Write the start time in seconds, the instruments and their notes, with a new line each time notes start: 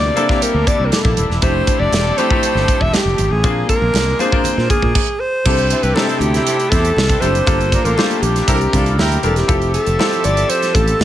Already playing: string section C3 G3 A#3 D4 E4, grand piano A#3 C4 D4 E4 G4, alto saxophone D5
0.16 grand piano A#3 C4 D4 E4 A4, closed hi-hat, muted conga
0.29 grand piano A#3 C4 D4 E4 G4, kick, snare
0.42 alto saxophone A#4, closed hi-hat, muted conga
0.54 fretless electric bass D2
0.67 alto saxophone D5, kick, closed hi-hat, low conga
0.80 fretless electric bass C2
0.86 alto saxophone A#4
0.92 alto saxophone A4, snare, closed hi-hat, high conga
1.05 fretless electric bass A#1, kick
1.17 fretless electric bass D#1, closed hi-hat, high conga
1.30 fretless electric bass E1, snare
1.42 fretless electric bass F1, string section F3 C4 G4 A4, grand piano A3 C4 D4 E4 G4, alto saxophone C5, kick, closed hi-hat, muted conga
1.67 kick, closed hi-hat
1.80 fretless electric bass F1, alto saxophone D5
1.92 fretless electric bass E1, snare, closed hi-hat, high conga
2.18 grand piano A3 C4 D4 E4 G4, alto saxophone C5, closed hi-hat, muted conga
2.30 grand piano A3 C4 D4 E4 G4, kick
2.43 closed hi-hat, muted conga
2.55 fretless electric bass G1, snare
2.68 kick, closed hi-hat
2.81 fretless electric bass E1, alto saxophone E5, kick
2.93 alto saxophone G4, snare, closed hi-hat, high conga
3.05 fretless electric bass F1
3.18 fretless electric bass G#1, closed hi-hat, high conga
3.31 fretless electric bass A1, alto saxophone G#4
3.43 fretless electric bass A#1, string section G#3 A#3, grand piano A#3 C4 D4 F4 G#4, kick, closed hi-hat, muted conga
3.69 alto saxophone A#4, kick, closed hi-hat
3.82 fretless electric bass A#1
3.94 fretless electric bass C2, snare, closed hi-hat, high conga
4.19 grand piano A#3 C4 D4 F4 G#4, alto saxophone C5, closed hi-hat, muted conga
4.32 grand piano A#3 C4 D4 F4 A#4, kick
4.44 closed hi-hat, muted conga, low conga
4.58 fretless electric bass A#2, snare
4.70 alto saxophone G#4, kick, closed hi-hat, low conga
4.82 fretless electric bass A#2, kick
4.95 kick, crash
5.20 alto saxophone C5
5.45 fretless electric bass C2, string section C3 G3 A3 D4 E4, grand piano C4 D4 E4 G4 A4, kick, crash, muted conga
5.58 closed hi-hat
5.70 horn section C4 E4 A4, closed hi-hat
5.82 fretless electric bass C2, horn section C4 E4 G4, alto saxophone B4, closed hi-hat
5.95 grand piano C4 D4 D#4 G4 A4, horn section C4 E4 G4, alto saxophone A4, snare, high conga
6.02 grand piano E4
6.08 horn section C4 E4 A4, closed hi-hat
6.19 fretless electric bass D2, alto saxophone G4, closed hi-hat, muted conga
6.34 horn section C4 E4 G4, snare, closed hi-hat
6.46 horn section C4 E4 A4, closed hi-hat, muted conga
6.60 closed hi-hat
6.70 fretless electric bass E2, horn section C4 E4 G4, alto saxophone A4, kick, closed hi-hat
6.85 closed hi-hat
6.96 fretless electric bass C2, snare, high conga
7.09 horn section C4 E4 A4, kick, closed hi-hat
7.21 fretless electric bass F#1, grand piano C4 D4 E4 G4 A4, alto saxophone C5, closed hi-hat, high conga
7.35 closed hi-hat
7.47 fretless electric bass G1, string section A#3 F4 A4, grand piano A#3 D4 F4 G4 A4, kick, closed hi-hat, muted conga
7.61 closed hi-hat
7.72 horn section D4 F4 A#4, kick, closed hi-hat
7.84 fretless electric bass A1, horn section F4 A4 C5, alto saxophone A#4, closed hi-hat
7.97 grand piano A3 D4 F4 G4 C5, alto saxophone A4, snare, high conga
8.03 grand piano A#3
8.11 closed hi-hat
8.22 fretless electric bass A#1, alto saxophone G4, closed hi-hat, muted conga
8.36 snare, closed hi-hat
8.47 fretless electric bass C2, string section C3 A#3 E4, grand piano C4 D4 E4 G4 A4, horn section E4 G4 A#4, kick, closed hi-hat, muted conga
8.55 grand piano A#4
8.61 closed hi-hat
8.73 fretless electric bass C2, horn section D4 F4 A4, kick, closed hi-hat, low conga
8.86 closed hi-hat
8.98 fretless electric bass D2, horn section E4 G4 A#4, snare, high conga
9.12 closed hi-hat
9.22 fretless electric bass E1, grand piano C4 D4 E4 G4 A#4, alto saxophone A4, closed hi-hat, high conga
9.36 alto saxophone G4, snare, closed hi-hat
9.48 fretless electric bass F1, string section F3 C4 G4 A4 E5, grand piano C4 E4 F4 G4 A4, kick, closed hi-hat, muted conga
9.62 closed hi-hat
9.74 alto saxophone A4, closed hi-hat
9.86 fretless electric bass F1, closed hi-hat
9.99 grand piano C4 E4 F4 G4 A4, snare, high conga
10.12 closed hi-hat
10.24 fretless electric bass G1, alto saxophone D5, closed hi-hat, muted conga
10.37 closed hi-hat
10.50 alto saxophone C5, closed hi-hat, muted conga
10.63 snare, closed hi-hat
10.75 fretless electric bass A1, alto saxophone A4, kick, closed hi-hat
10.88 closed hi-hat
11.00 fretless electric bass E1, snare, high conga